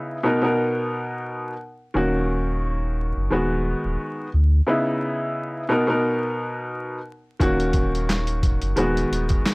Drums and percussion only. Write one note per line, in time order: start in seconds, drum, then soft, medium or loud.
7.40 kick loud
7.40 closed hi-hat medium
7.60 closed hi-hat soft
7.73 kick medium
7.73 closed hi-hat medium
7.95 closed hi-hat soft
8.10 snare loud
8.10 clap medium
8.10 closed hi-hat medium
8.27 closed hi-hat medium
8.43 kick loud
8.43 closed hi-hat medium
8.61 closed hi-hat medium
8.77 closed hi-hat medium
8.97 closed hi-hat medium
9.13 closed hi-hat medium
9.29 kick medium
9.29 closed hi-hat medium
9.46 snare loud
9.46 clap medium
9.46 closed hi-hat medium